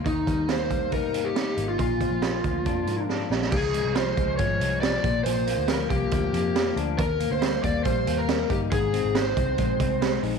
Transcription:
<<
  \new Staff \with { instrumentName = "Lead electric guitar" } { \time 4/4 \key ees \major \tempo 4 = 139 ees'4 c''4 bes'8. g'4 f'16 | f'2. r4 | aes'4 c''4 des''4 d''4 | c''4 bes'8 g'2 r8 |
bes'8. c''8. d''8 c''8. bes'8. g'8 | aes'4 c''2~ c''8 r8 | }
  \new Staff \with { instrumentName = "Clean electric guitar" } { \clef bass \time 4/4 \key ees \major ees8 g8 bes8 g8 ees'8 bes8 ees'8 bes8 | bes,8 f8 bes8 f8 d'8 bes8 d'8 bes8 | r8 aes8 f8 aes8 f8 aes8 f8 bes,8 | bes,8 bes8 f8 bes8 f8 bes8 f8 d'8 |
r8 bes8 g8 bes8 g8 bes8 g8 ees'8 | aes,8 c'8 aes8 c'8 aes8 c'8 aes8 ees'8 | }
  \new Staff \with { instrumentName = "Picked electric bass" } { \clef bass \time 4/4 \key ees \major ees,8 ees,2. aes,,8 | bes,,8. bes,,8. d,8 f,8 aes,4 bes,,8 | des,8. c,8. des,8 aes,,8 c,4 bes,,8 | bes,,8. d,8. c,8 d,8 f,4 d,8 |
ees,8. d,8. ees,8 bes,,8 ees,4 g,,8 | aes,,8. aes,,8. c,8 bes,,8 c,4 bes,,8 | }
  \new DrumStaff \with { instrumentName = "Drums" } \drummode { \time 4/4 <hh bd>8 <hh bd>8 <hh sn>8 <hh bd>8 <hh bd>8 hh8 <hh sn>8 hh8 | <hh bd>8 <hh bd>8 <hh sn>8 <hh bd>8 <hh bd>8 hh8 sn8 sn16 sn16 | <cymc bd>8 hh8 <hh sn>8 <hh bd>8 <hh bd>8 hh8 <hh sn>8 <hh bd>8 | hh8 hh8 <hh sn>8 <hh bd>8 <hh bd>8 hh8 <hh sn>8 hh8 |
<hh bd>8 hh8 <hh sn>8 <hh bd>8 <hh bd>8 hh8 <hh sn>8 <hh bd>8 | <hh bd>8 hh8 <hh sn>8 <hh bd>8 <hh bd>8 <hh bd>8 <hh sn>8 hho8 | }
>>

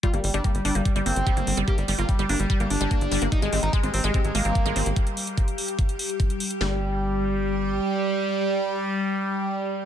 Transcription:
<<
  \new Staff \with { instrumentName = "Ambient pad" } { \time 4/4 \key g \phrygian \tempo 4 = 146 <g g'>1~ | <g g'>1~ | <g g'>1~ | <g g'>1 |
<g g'>1~ | <g g'>1 | }
  \new Staff \with { instrumentName = "Analog synth lead" } { \clef bass \time 4/4 \key g \phrygian f'16 g16 g16 d'16 g16 g16 d'16 g16 g16 g16 c'4~ c'16 r16 | g'16 g16 g16 f'16 g16 g16 d'16 g16 g16 g16 d'4~ d'16 r16 | ees'16 aes16 aes16 ees'16 aes16 aes16 c'16 aes16 aes16 aes16 bes4~ bes16 r16 | r1 |
g1~ | g1 | }
  \new Staff \with { instrumentName = "Synth arpeggio sound" } { \clef bass \time 4/4 \key g \phrygian g16 bes16 r16 g16 bes16 r16 g16 bes16 r16 g16 bes16 r16 g16 bes16 r16 g16 | bes16 r16 g16 bes16 r16 g16 bes16 r16 g16 bes16 r16 g16 bes16 r16 g16 bes16 | r16 aes16 c'16 r16 aes16 c'16 r16 aes16 c'16 r16 aes16 c'16 r16 aes16 c'16 r16 | r1 |
g8 r2. r8 | r1 | }
  \new Staff \with { instrumentName = "Analog synth bass" } { \clef bass \time 4/4 \key g \phrygian r16 g,,16 g,,16 g,,16 r16 g,,16 g,,16 g,,16 r16 g,,16 g,,16 g,,16 r16 g,,16 g,,16 g,,16 | r16 g,,16 g,,16 g,,16 r16 g,,16 g,,16 g,,16 r16 g,,16 g,,16 g,,16 r16 g,,16 g,,16 g,,16 | r16 aes,,16 aes,,16 aes,,16 r16 aes,,16 aes,,16 aes,,16 r16 aes,,16 aes,,16 aes,,16 r16 aes,,16 aes,,16 aes,,16 | r1 |
g,,2. r4 | r1 | }
  \new DrumStaff \with { instrumentName = "Drums" } \drummode { \time 4/4 <hh bd>16 hh16 hho16 hh16 <hh bd>16 hh16 hho16 hh16 <hh bd>16 hh16 hho16 hh16 <hh bd>16 hh16 hho16 hh16 | <hh bd>16 hh16 hho16 hh16 <hh bd>16 hh16 hho16 hh16 <hh bd>16 hh16 hho16 hh16 <hh bd>16 hh16 hho16 hh16 | <hh bd>16 hh16 hho16 hh16 <hh bd>16 hh16 hho16 hh16 <hh bd>16 hh16 hho16 hh16 <hh bd>16 hh16 hho16 hh16 | <hh bd>16 hh16 hho16 hh16 <hh bd>16 hh16 hho16 hh16 <hh bd>16 hh16 hho16 hh16 <hh bd>16 hh16 hho16 hh16 |
sn4 r4 r4 r4 | r4 r4 r4 r4 | }
>>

